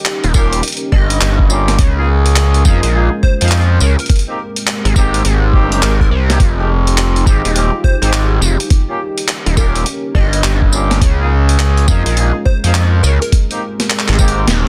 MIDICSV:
0, 0, Header, 1, 7, 480
1, 0, Start_track
1, 0, Tempo, 576923
1, 1486, Time_signature, 4, 2, 24, 8
1, 12214, End_track
2, 0, Start_track
2, 0, Title_t, "Digital synth lead"
2, 0, Program_c, 0, 84
2, 287, Note_on_c, 0, 70, 93
2, 448, Note_off_c, 0, 70, 0
2, 767, Note_on_c, 0, 75, 101
2, 1451, Note_off_c, 0, 75, 0
2, 2686, Note_on_c, 0, 72, 90
2, 2783, Note_off_c, 0, 72, 0
2, 2837, Note_on_c, 0, 72, 78
2, 2894, Note_off_c, 0, 72, 0
2, 3167, Note_on_c, 0, 70, 92
2, 3264, Note_off_c, 0, 70, 0
2, 3325, Note_on_c, 0, 70, 78
2, 3378, Note_off_c, 0, 70, 0
2, 4845, Note_on_c, 0, 70, 88
2, 4943, Note_off_c, 0, 70, 0
2, 5001, Note_on_c, 0, 70, 78
2, 5056, Note_off_c, 0, 70, 0
2, 6524, Note_on_c, 0, 72, 90
2, 6622, Note_off_c, 0, 72, 0
2, 6671, Note_on_c, 0, 72, 77
2, 6731, Note_off_c, 0, 72, 0
2, 7967, Note_on_c, 0, 70, 97
2, 8128, Note_off_c, 0, 70, 0
2, 8444, Note_on_c, 0, 75, 100
2, 9130, Note_off_c, 0, 75, 0
2, 10362, Note_on_c, 0, 72, 89
2, 10461, Note_off_c, 0, 72, 0
2, 10514, Note_on_c, 0, 72, 74
2, 10572, Note_off_c, 0, 72, 0
2, 10841, Note_on_c, 0, 70, 95
2, 10941, Note_off_c, 0, 70, 0
2, 10995, Note_on_c, 0, 70, 78
2, 11053, Note_off_c, 0, 70, 0
2, 12214, End_track
3, 0, Start_track
3, 0, Title_t, "Analog synth pad"
3, 0, Program_c, 1, 89
3, 0, Note_on_c, 1, 61, 80
3, 0, Note_on_c, 1, 63, 79
3, 0, Note_on_c, 1, 67, 82
3, 0, Note_on_c, 1, 70, 92
3, 1455, Note_off_c, 1, 63, 0
3, 1456, Note_off_c, 1, 67, 0
3, 1480, Note_on_c, 1, 56, 85
3, 1482, Note_on_c, 1, 65, 74
3, 3375, Note_off_c, 1, 61, 0
3, 3384, Note_off_c, 1, 56, 0
3, 3385, Note_off_c, 1, 65, 0
3, 3400, Note_on_c, 1, 67, 76
3, 3403, Note_on_c, 1, 56, 80
3, 3404, Note_on_c, 1, 60, 77
3, 5294, Note_off_c, 1, 70, 0
3, 5304, Note_off_c, 1, 67, 0
3, 5305, Note_off_c, 1, 56, 0
3, 5306, Note_off_c, 1, 60, 0
3, 5329, Note_on_c, 1, 63, 74
3, 5329, Note_on_c, 1, 65, 79
3, 5330, Note_on_c, 1, 67, 85
3, 5331, Note_on_c, 1, 68, 91
3, 7229, Note_off_c, 1, 65, 0
3, 7229, Note_off_c, 1, 68, 0
3, 7242, Note_on_c, 1, 70, 91
3, 7244, Note_on_c, 1, 61, 77
3, 9134, Note_off_c, 1, 63, 0
3, 9135, Note_off_c, 1, 67, 0
3, 9145, Note_off_c, 1, 70, 0
3, 9164, Note_on_c, 1, 70, 89
3, 9165, Note_on_c, 1, 65, 75
3, 9168, Note_on_c, 1, 56, 79
3, 11052, Note_off_c, 1, 61, 0
3, 11066, Note_off_c, 1, 65, 0
3, 11088, Note_on_c, 1, 60, 77
3, 11088, Note_on_c, 1, 67, 75
3, 12214, Note_off_c, 1, 56, 0
3, 12214, Note_off_c, 1, 60, 0
3, 12214, Note_off_c, 1, 67, 0
3, 12214, Note_off_c, 1, 70, 0
3, 12214, End_track
4, 0, Start_track
4, 0, Title_t, "Horn section"
4, 0, Program_c, 2, 61
4, 289, Note_on_c, 2, 61, 92
4, 290, Note_on_c, 2, 58, 101
4, 290, Note_on_c, 2, 65, 94
4, 290, Note_on_c, 2, 67, 111
4, 488, Note_off_c, 2, 61, 0
4, 489, Note_off_c, 2, 58, 0
4, 489, Note_off_c, 2, 65, 0
4, 489, Note_off_c, 2, 67, 0
4, 1246, Note_on_c, 2, 58, 94
4, 1246, Note_on_c, 2, 61, 91
4, 1246, Note_on_c, 2, 65, 92
4, 1247, Note_on_c, 2, 67, 108
4, 1447, Note_off_c, 2, 58, 0
4, 1447, Note_off_c, 2, 61, 0
4, 1447, Note_off_c, 2, 65, 0
4, 1447, Note_off_c, 2, 67, 0
4, 1640, Note_on_c, 2, 63, 80
4, 1640, Note_on_c, 2, 65, 79
4, 1640, Note_on_c, 2, 68, 102
4, 1641, Note_on_c, 2, 58, 86
4, 1724, Note_off_c, 2, 63, 0
4, 1724, Note_off_c, 2, 65, 0
4, 1725, Note_off_c, 2, 58, 0
4, 1725, Note_off_c, 2, 68, 0
4, 2208, Note_on_c, 2, 63, 82
4, 2209, Note_on_c, 2, 58, 91
4, 2209, Note_on_c, 2, 65, 83
4, 2209, Note_on_c, 2, 68, 98
4, 2408, Note_off_c, 2, 58, 0
4, 2408, Note_off_c, 2, 63, 0
4, 2408, Note_off_c, 2, 65, 0
4, 2408, Note_off_c, 2, 68, 0
4, 2447, Note_on_c, 2, 68, 103
4, 2448, Note_on_c, 2, 58, 91
4, 2448, Note_on_c, 2, 63, 84
4, 2448, Note_on_c, 2, 65, 83
4, 2595, Note_off_c, 2, 58, 0
4, 2595, Note_off_c, 2, 63, 0
4, 2595, Note_off_c, 2, 65, 0
4, 2595, Note_off_c, 2, 68, 0
4, 2841, Note_on_c, 2, 63, 86
4, 2841, Note_on_c, 2, 65, 85
4, 2841, Note_on_c, 2, 68, 99
4, 2842, Note_on_c, 2, 58, 89
4, 3012, Note_off_c, 2, 58, 0
4, 3012, Note_off_c, 2, 63, 0
4, 3012, Note_off_c, 2, 65, 0
4, 3012, Note_off_c, 2, 68, 0
4, 3562, Note_on_c, 2, 58, 86
4, 3562, Note_on_c, 2, 60, 77
4, 3562, Note_on_c, 2, 63, 80
4, 3562, Note_on_c, 2, 67, 89
4, 3645, Note_off_c, 2, 58, 0
4, 3645, Note_off_c, 2, 60, 0
4, 3645, Note_off_c, 2, 63, 0
4, 3645, Note_off_c, 2, 67, 0
4, 4129, Note_on_c, 2, 60, 90
4, 4129, Note_on_c, 2, 63, 94
4, 4129, Note_on_c, 2, 67, 115
4, 4130, Note_on_c, 2, 58, 97
4, 4328, Note_off_c, 2, 63, 0
4, 4328, Note_off_c, 2, 67, 0
4, 4329, Note_off_c, 2, 58, 0
4, 4329, Note_off_c, 2, 60, 0
4, 4607, Note_on_c, 2, 58, 92
4, 4607, Note_on_c, 2, 63, 89
4, 4607, Note_on_c, 2, 67, 110
4, 4608, Note_on_c, 2, 60, 88
4, 4736, Note_off_c, 2, 58, 0
4, 4736, Note_off_c, 2, 60, 0
4, 4736, Note_off_c, 2, 63, 0
4, 4736, Note_off_c, 2, 67, 0
4, 4757, Note_on_c, 2, 58, 99
4, 4758, Note_on_c, 2, 63, 93
4, 4758, Note_on_c, 2, 67, 112
4, 4759, Note_on_c, 2, 60, 91
4, 4930, Note_off_c, 2, 58, 0
4, 4930, Note_off_c, 2, 63, 0
4, 4930, Note_off_c, 2, 67, 0
4, 4931, Note_off_c, 2, 60, 0
4, 5237, Note_on_c, 2, 58, 92
4, 5237, Note_on_c, 2, 60, 85
4, 5238, Note_on_c, 2, 63, 85
4, 5238, Note_on_c, 2, 67, 103
4, 5315, Note_off_c, 2, 58, 0
4, 5315, Note_off_c, 2, 60, 0
4, 5315, Note_off_c, 2, 63, 0
4, 5315, Note_off_c, 2, 67, 0
4, 5476, Note_on_c, 2, 56, 88
4, 5476, Note_on_c, 2, 60, 76
4, 5476, Note_on_c, 2, 67, 96
4, 5477, Note_on_c, 2, 63, 83
4, 5562, Note_off_c, 2, 56, 0
4, 5562, Note_off_c, 2, 60, 0
4, 5562, Note_off_c, 2, 67, 0
4, 5563, Note_off_c, 2, 63, 0
4, 6045, Note_on_c, 2, 56, 88
4, 6045, Note_on_c, 2, 60, 83
4, 6045, Note_on_c, 2, 67, 97
4, 6046, Note_on_c, 2, 63, 81
4, 6246, Note_off_c, 2, 56, 0
4, 6246, Note_off_c, 2, 60, 0
4, 6246, Note_off_c, 2, 67, 0
4, 6247, Note_off_c, 2, 63, 0
4, 6283, Note_on_c, 2, 56, 92
4, 6283, Note_on_c, 2, 63, 83
4, 6283, Note_on_c, 2, 67, 102
4, 6284, Note_on_c, 2, 60, 83
4, 6432, Note_off_c, 2, 63, 0
4, 6432, Note_off_c, 2, 67, 0
4, 6433, Note_off_c, 2, 56, 0
4, 6433, Note_off_c, 2, 60, 0
4, 6676, Note_on_c, 2, 56, 88
4, 6676, Note_on_c, 2, 60, 82
4, 6677, Note_on_c, 2, 63, 80
4, 6677, Note_on_c, 2, 67, 94
4, 6849, Note_off_c, 2, 60, 0
4, 6850, Note_off_c, 2, 56, 0
4, 6850, Note_off_c, 2, 63, 0
4, 6850, Note_off_c, 2, 67, 0
4, 7394, Note_on_c, 2, 65, 75
4, 7394, Note_on_c, 2, 67, 97
4, 7395, Note_on_c, 2, 58, 86
4, 7395, Note_on_c, 2, 61, 80
4, 7481, Note_off_c, 2, 65, 0
4, 7481, Note_off_c, 2, 67, 0
4, 7482, Note_off_c, 2, 58, 0
4, 7482, Note_off_c, 2, 61, 0
4, 7964, Note_on_c, 2, 61, 94
4, 7965, Note_on_c, 2, 58, 98
4, 7965, Note_on_c, 2, 65, 95
4, 7965, Note_on_c, 2, 67, 110
4, 8166, Note_off_c, 2, 61, 0
4, 8166, Note_off_c, 2, 65, 0
4, 8166, Note_off_c, 2, 67, 0
4, 8167, Note_off_c, 2, 58, 0
4, 8924, Note_on_c, 2, 67, 108
4, 8925, Note_on_c, 2, 58, 96
4, 8925, Note_on_c, 2, 61, 90
4, 8925, Note_on_c, 2, 65, 87
4, 9126, Note_off_c, 2, 58, 0
4, 9126, Note_off_c, 2, 61, 0
4, 9126, Note_off_c, 2, 65, 0
4, 9126, Note_off_c, 2, 67, 0
4, 9318, Note_on_c, 2, 65, 80
4, 9319, Note_on_c, 2, 63, 77
4, 9319, Note_on_c, 2, 68, 102
4, 9320, Note_on_c, 2, 58, 87
4, 9403, Note_off_c, 2, 65, 0
4, 9404, Note_off_c, 2, 63, 0
4, 9404, Note_off_c, 2, 68, 0
4, 9405, Note_off_c, 2, 58, 0
4, 9884, Note_on_c, 2, 63, 79
4, 9885, Note_on_c, 2, 65, 86
4, 9885, Note_on_c, 2, 68, 96
4, 9886, Note_on_c, 2, 58, 93
4, 10086, Note_off_c, 2, 63, 0
4, 10087, Note_off_c, 2, 58, 0
4, 10087, Note_off_c, 2, 65, 0
4, 10087, Note_off_c, 2, 68, 0
4, 10125, Note_on_c, 2, 58, 91
4, 10125, Note_on_c, 2, 63, 83
4, 10125, Note_on_c, 2, 65, 79
4, 10125, Note_on_c, 2, 68, 98
4, 10273, Note_off_c, 2, 63, 0
4, 10273, Note_off_c, 2, 65, 0
4, 10274, Note_off_c, 2, 58, 0
4, 10274, Note_off_c, 2, 68, 0
4, 10515, Note_on_c, 2, 63, 84
4, 10516, Note_on_c, 2, 65, 83
4, 10517, Note_on_c, 2, 58, 89
4, 10517, Note_on_c, 2, 68, 98
4, 10689, Note_off_c, 2, 63, 0
4, 10689, Note_off_c, 2, 65, 0
4, 10690, Note_off_c, 2, 58, 0
4, 10690, Note_off_c, 2, 68, 0
4, 11239, Note_on_c, 2, 60, 78
4, 11239, Note_on_c, 2, 63, 77
4, 11239, Note_on_c, 2, 67, 92
4, 11240, Note_on_c, 2, 58, 90
4, 11324, Note_off_c, 2, 58, 0
4, 11324, Note_off_c, 2, 60, 0
4, 11324, Note_off_c, 2, 63, 0
4, 11324, Note_off_c, 2, 67, 0
4, 11807, Note_on_c, 2, 58, 103
4, 11807, Note_on_c, 2, 60, 93
4, 11807, Note_on_c, 2, 67, 111
4, 11808, Note_on_c, 2, 63, 96
4, 12007, Note_off_c, 2, 58, 0
4, 12007, Note_off_c, 2, 60, 0
4, 12007, Note_off_c, 2, 67, 0
4, 12008, Note_off_c, 2, 63, 0
4, 12214, End_track
5, 0, Start_track
5, 0, Title_t, "Analog synth bass"
5, 0, Program_c, 3, 38
5, 200, Note_on_c, 3, 27, 95
5, 273, Note_off_c, 3, 27, 0
5, 286, Note_on_c, 3, 27, 93
5, 512, Note_off_c, 3, 27, 0
5, 767, Note_on_c, 3, 31, 100
5, 993, Note_off_c, 3, 31, 0
5, 1007, Note_on_c, 3, 31, 105
5, 1473, Note_off_c, 3, 31, 0
5, 1487, Note_on_c, 3, 37, 98
5, 2192, Note_off_c, 3, 37, 0
5, 2209, Note_on_c, 3, 41, 96
5, 2335, Note_off_c, 3, 41, 0
5, 2357, Note_on_c, 3, 34, 95
5, 2573, Note_off_c, 3, 34, 0
5, 2844, Note_on_c, 3, 41, 99
5, 3155, Note_off_c, 3, 41, 0
5, 3171, Note_on_c, 3, 37, 101
5, 3296, Note_off_c, 3, 37, 0
5, 4036, Note_on_c, 3, 32, 100
5, 4111, Note_off_c, 3, 32, 0
5, 4124, Note_on_c, 3, 32, 93
5, 4351, Note_off_c, 3, 32, 0
5, 4368, Note_on_c, 3, 32, 97
5, 4833, Note_off_c, 3, 32, 0
5, 4846, Note_on_c, 3, 32, 98
5, 5072, Note_off_c, 3, 32, 0
5, 5085, Note_on_c, 3, 36, 99
5, 5311, Note_off_c, 3, 36, 0
5, 5324, Note_on_c, 3, 29, 93
5, 6031, Note_off_c, 3, 29, 0
5, 6045, Note_on_c, 3, 32, 95
5, 6173, Note_off_c, 3, 32, 0
5, 6197, Note_on_c, 3, 27, 93
5, 6413, Note_off_c, 3, 27, 0
5, 6672, Note_on_c, 3, 32, 93
5, 6989, Note_off_c, 3, 32, 0
5, 6999, Note_on_c, 3, 29, 99
5, 7130, Note_off_c, 3, 29, 0
5, 7874, Note_on_c, 3, 27, 97
5, 7950, Note_off_c, 3, 27, 0
5, 7962, Note_on_c, 3, 27, 96
5, 8190, Note_off_c, 3, 27, 0
5, 8442, Note_on_c, 3, 31, 98
5, 8670, Note_off_c, 3, 31, 0
5, 8682, Note_on_c, 3, 31, 97
5, 9150, Note_off_c, 3, 31, 0
5, 9164, Note_on_c, 3, 37, 92
5, 9871, Note_off_c, 3, 37, 0
5, 9884, Note_on_c, 3, 41, 92
5, 10013, Note_off_c, 3, 41, 0
5, 10033, Note_on_c, 3, 34, 98
5, 10251, Note_off_c, 3, 34, 0
5, 10516, Note_on_c, 3, 41, 91
5, 10831, Note_off_c, 3, 41, 0
5, 10845, Note_on_c, 3, 37, 94
5, 10973, Note_off_c, 3, 37, 0
5, 11721, Note_on_c, 3, 32, 97
5, 11793, Note_off_c, 3, 32, 0
5, 11805, Note_on_c, 3, 32, 91
5, 12031, Note_off_c, 3, 32, 0
5, 12044, Note_on_c, 3, 27, 101
5, 12214, Note_off_c, 3, 27, 0
5, 12214, End_track
6, 0, Start_track
6, 0, Title_t, "Reverse cymbal"
6, 0, Program_c, 4, 119
6, 12046, Note_on_c, 4, 60, 66
6, 12214, Note_off_c, 4, 60, 0
6, 12214, End_track
7, 0, Start_track
7, 0, Title_t, "Drums"
7, 45, Note_on_c, 9, 39, 120
7, 45, Note_on_c, 9, 42, 69
7, 128, Note_off_c, 9, 39, 0
7, 128, Note_off_c, 9, 42, 0
7, 197, Note_on_c, 9, 42, 41
7, 280, Note_off_c, 9, 42, 0
7, 283, Note_on_c, 9, 54, 60
7, 286, Note_on_c, 9, 36, 114
7, 366, Note_off_c, 9, 54, 0
7, 369, Note_off_c, 9, 36, 0
7, 437, Note_on_c, 9, 42, 57
7, 520, Note_off_c, 9, 42, 0
7, 525, Note_on_c, 9, 42, 65
7, 563, Note_off_c, 9, 42, 0
7, 563, Note_on_c, 9, 42, 54
7, 603, Note_off_c, 9, 42, 0
7, 603, Note_on_c, 9, 42, 42
7, 639, Note_off_c, 9, 42, 0
7, 639, Note_on_c, 9, 42, 36
7, 722, Note_off_c, 9, 42, 0
7, 766, Note_on_c, 9, 36, 68
7, 850, Note_off_c, 9, 36, 0
7, 917, Note_on_c, 9, 42, 55
7, 1001, Note_off_c, 9, 42, 0
7, 1007, Note_on_c, 9, 39, 127
7, 1007, Note_on_c, 9, 42, 71
7, 1091, Note_off_c, 9, 39, 0
7, 1091, Note_off_c, 9, 42, 0
7, 1158, Note_on_c, 9, 36, 62
7, 1241, Note_off_c, 9, 36, 0
7, 1247, Note_on_c, 9, 54, 63
7, 1330, Note_off_c, 9, 54, 0
7, 1400, Note_on_c, 9, 40, 56
7, 1400, Note_on_c, 9, 42, 55
7, 1483, Note_off_c, 9, 40, 0
7, 1483, Note_off_c, 9, 42, 0
7, 1486, Note_on_c, 9, 36, 127
7, 1486, Note_on_c, 9, 42, 71
7, 1569, Note_off_c, 9, 42, 0
7, 1570, Note_off_c, 9, 36, 0
7, 1877, Note_on_c, 9, 42, 55
7, 1961, Note_off_c, 9, 42, 0
7, 1964, Note_on_c, 9, 39, 121
7, 1964, Note_on_c, 9, 42, 69
7, 2047, Note_off_c, 9, 39, 0
7, 2047, Note_off_c, 9, 42, 0
7, 2116, Note_on_c, 9, 42, 39
7, 2200, Note_off_c, 9, 42, 0
7, 2205, Note_on_c, 9, 54, 62
7, 2207, Note_on_c, 9, 36, 116
7, 2288, Note_off_c, 9, 54, 0
7, 2290, Note_off_c, 9, 36, 0
7, 2355, Note_on_c, 9, 42, 54
7, 2439, Note_off_c, 9, 42, 0
7, 2687, Note_on_c, 9, 36, 66
7, 2770, Note_off_c, 9, 36, 0
7, 2837, Note_on_c, 9, 42, 51
7, 2845, Note_off_c, 9, 42, 0
7, 2845, Note_on_c, 9, 42, 43
7, 2893, Note_off_c, 9, 42, 0
7, 2893, Note_on_c, 9, 42, 34
7, 2923, Note_off_c, 9, 42, 0
7, 2923, Note_on_c, 9, 39, 125
7, 2923, Note_on_c, 9, 42, 67
7, 2974, Note_off_c, 9, 42, 0
7, 2974, Note_on_c, 9, 42, 24
7, 3005, Note_off_c, 9, 42, 0
7, 3005, Note_on_c, 9, 42, 18
7, 3006, Note_off_c, 9, 39, 0
7, 3088, Note_off_c, 9, 42, 0
7, 3165, Note_on_c, 9, 54, 62
7, 3249, Note_off_c, 9, 54, 0
7, 3319, Note_on_c, 9, 42, 26
7, 3328, Note_off_c, 9, 42, 0
7, 3328, Note_on_c, 9, 42, 29
7, 3378, Note_off_c, 9, 42, 0
7, 3378, Note_on_c, 9, 42, 32
7, 3407, Note_on_c, 9, 36, 123
7, 3408, Note_off_c, 9, 42, 0
7, 3408, Note_on_c, 9, 42, 67
7, 3458, Note_off_c, 9, 42, 0
7, 3458, Note_on_c, 9, 42, 46
7, 3487, Note_off_c, 9, 42, 0
7, 3487, Note_on_c, 9, 42, 48
7, 3490, Note_off_c, 9, 36, 0
7, 3570, Note_off_c, 9, 42, 0
7, 3797, Note_on_c, 9, 42, 54
7, 3880, Note_off_c, 9, 42, 0
7, 3887, Note_on_c, 9, 39, 125
7, 3887, Note_on_c, 9, 42, 68
7, 3970, Note_off_c, 9, 39, 0
7, 3970, Note_off_c, 9, 42, 0
7, 4038, Note_on_c, 9, 42, 39
7, 4121, Note_off_c, 9, 42, 0
7, 4125, Note_on_c, 9, 36, 112
7, 4126, Note_on_c, 9, 54, 62
7, 4209, Note_off_c, 9, 36, 0
7, 4209, Note_off_c, 9, 54, 0
7, 4277, Note_on_c, 9, 42, 54
7, 4361, Note_off_c, 9, 42, 0
7, 4367, Note_on_c, 9, 42, 66
7, 4450, Note_off_c, 9, 42, 0
7, 4605, Note_on_c, 9, 36, 65
7, 4688, Note_off_c, 9, 36, 0
7, 4759, Note_on_c, 9, 42, 49
7, 4842, Note_off_c, 9, 42, 0
7, 4846, Note_on_c, 9, 39, 122
7, 4846, Note_on_c, 9, 42, 64
7, 4930, Note_off_c, 9, 39, 0
7, 4930, Note_off_c, 9, 42, 0
7, 4997, Note_on_c, 9, 36, 62
7, 5080, Note_off_c, 9, 36, 0
7, 5240, Note_on_c, 9, 40, 50
7, 5240, Note_on_c, 9, 42, 54
7, 5323, Note_off_c, 9, 40, 0
7, 5323, Note_off_c, 9, 42, 0
7, 5324, Note_on_c, 9, 36, 120
7, 5325, Note_on_c, 9, 42, 65
7, 5407, Note_off_c, 9, 36, 0
7, 5409, Note_off_c, 9, 42, 0
7, 5718, Note_on_c, 9, 42, 51
7, 5801, Note_off_c, 9, 42, 0
7, 5805, Note_on_c, 9, 39, 118
7, 5805, Note_on_c, 9, 42, 66
7, 5888, Note_off_c, 9, 39, 0
7, 5888, Note_off_c, 9, 42, 0
7, 5959, Note_on_c, 9, 42, 38
7, 6042, Note_off_c, 9, 42, 0
7, 6043, Note_on_c, 9, 36, 106
7, 6047, Note_on_c, 9, 54, 64
7, 6127, Note_off_c, 9, 36, 0
7, 6130, Note_off_c, 9, 54, 0
7, 6199, Note_on_c, 9, 42, 51
7, 6283, Note_off_c, 9, 42, 0
7, 6287, Note_on_c, 9, 42, 66
7, 6371, Note_off_c, 9, 42, 0
7, 6523, Note_on_c, 9, 36, 61
7, 6606, Note_off_c, 9, 36, 0
7, 6677, Note_on_c, 9, 42, 50
7, 6761, Note_off_c, 9, 42, 0
7, 6766, Note_on_c, 9, 39, 119
7, 6766, Note_on_c, 9, 42, 63
7, 6849, Note_off_c, 9, 39, 0
7, 6849, Note_off_c, 9, 42, 0
7, 7006, Note_on_c, 9, 54, 67
7, 7089, Note_off_c, 9, 54, 0
7, 7156, Note_on_c, 9, 42, 52
7, 7239, Note_off_c, 9, 42, 0
7, 7242, Note_on_c, 9, 36, 122
7, 7242, Note_on_c, 9, 42, 62
7, 7325, Note_off_c, 9, 42, 0
7, 7326, Note_off_c, 9, 36, 0
7, 7634, Note_on_c, 9, 42, 53
7, 7718, Note_off_c, 9, 42, 0
7, 7723, Note_on_c, 9, 39, 115
7, 7723, Note_on_c, 9, 42, 63
7, 7806, Note_off_c, 9, 39, 0
7, 7806, Note_off_c, 9, 42, 0
7, 7874, Note_on_c, 9, 42, 37
7, 7957, Note_off_c, 9, 42, 0
7, 7963, Note_on_c, 9, 36, 104
7, 7963, Note_on_c, 9, 54, 70
7, 8046, Note_off_c, 9, 36, 0
7, 8046, Note_off_c, 9, 54, 0
7, 8116, Note_on_c, 9, 42, 50
7, 8199, Note_off_c, 9, 42, 0
7, 8203, Note_on_c, 9, 42, 61
7, 8287, Note_off_c, 9, 42, 0
7, 8443, Note_on_c, 9, 36, 60
7, 8526, Note_off_c, 9, 36, 0
7, 8595, Note_on_c, 9, 42, 49
7, 8678, Note_off_c, 9, 42, 0
7, 8684, Note_on_c, 9, 39, 120
7, 8684, Note_on_c, 9, 42, 65
7, 8767, Note_off_c, 9, 39, 0
7, 8767, Note_off_c, 9, 42, 0
7, 8835, Note_on_c, 9, 36, 60
7, 8918, Note_off_c, 9, 36, 0
7, 8923, Note_on_c, 9, 54, 69
7, 9007, Note_off_c, 9, 54, 0
7, 9077, Note_on_c, 9, 40, 53
7, 9077, Note_on_c, 9, 42, 51
7, 9160, Note_off_c, 9, 40, 0
7, 9160, Note_off_c, 9, 42, 0
7, 9163, Note_on_c, 9, 36, 114
7, 9165, Note_on_c, 9, 42, 70
7, 9247, Note_off_c, 9, 36, 0
7, 9249, Note_off_c, 9, 42, 0
7, 9559, Note_on_c, 9, 42, 52
7, 9643, Note_off_c, 9, 42, 0
7, 9646, Note_on_c, 9, 39, 109
7, 9646, Note_on_c, 9, 42, 62
7, 9729, Note_off_c, 9, 39, 0
7, 9729, Note_off_c, 9, 42, 0
7, 9796, Note_on_c, 9, 42, 38
7, 9880, Note_off_c, 9, 42, 0
7, 9883, Note_on_c, 9, 54, 68
7, 9884, Note_on_c, 9, 36, 102
7, 9966, Note_off_c, 9, 54, 0
7, 9967, Note_off_c, 9, 36, 0
7, 10034, Note_on_c, 9, 42, 54
7, 10118, Note_off_c, 9, 42, 0
7, 10125, Note_on_c, 9, 42, 64
7, 10208, Note_off_c, 9, 42, 0
7, 10365, Note_on_c, 9, 36, 61
7, 10448, Note_off_c, 9, 36, 0
7, 10517, Note_on_c, 9, 42, 51
7, 10600, Note_off_c, 9, 42, 0
7, 10603, Note_on_c, 9, 39, 115
7, 10603, Note_on_c, 9, 42, 64
7, 10686, Note_off_c, 9, 39, 0
7, 10686, Note_off_c, 9, 42, 0
7, 10847, Note_on_c, 9, 54, 68
7, 10931, Note_off_c, 9, 54, 0
7, 10999, Note_on_c, 9, 42, 53
7, 11082, Note_off_c, 9, 42, 0
7, 11085, Note_on_c, 9, 36, 116
7, 11086, Note_on_c, 9, 42, 69
7, 11168, Note_off_c, 9, 36, 0
7, 11170, Note_off_c, 9, 42, 0
7, 11238, Note_on_c, 9, 42, 37
7, 11321, Note_off_c, 9, 42, 0
7, 11480, Note_on_c, 9, 40, 40
7, 11480, Note_on_c, 9, 42, 54
7, 11563, Note_off_c, 9, 40, 0
7, 11563, Note_off_c, 9, 42, 0
7, 11566, Note_on_c, 9, 39, 111
7, 11566, Note_on_c, 9, 42, 64
7, 11641, Note_off_c, 9, 39, 0
7, 11641, Note_on_c, 9, 39, 88
7, 11649, Note_off_c, 9, 42, 0
7, 11716, Note_off_c, 9, 39, 0
7, 11716, Note_on_c, 9, 39, 76
7, 11716, Note_on_c, 9, 42, 38
7, 11760, Note_off_c, 9, 39, 0
7, 11760, Note_on_c, 9, 39, 61
7, 11799, Note_off_c, 9, 42, 0
7, 11804, Note_on_c, 9, 54, 67
7, 11805, Note_on_c, 9, 36, 106
7, 11843, Note_off_c, 9, 39, 0
7, 11880, Note_on_c, 9, 42, 55
7, 11887, Note_off_c, 9, 54, 0
7, 11889, Note_off_c, 9, 36, 0
7, 11963, Note_off_c, 9, 42, 0
7, 12043, Note_on_c, 9, 38, 70
7, 12043, Note_on_c, 9, 42, 66
7, 12127, Note_off_c, 9, 38, 0
7, 12127, Note_off_c, 9, 42, 0
7, 12214, End_track
0, 0, End_of_file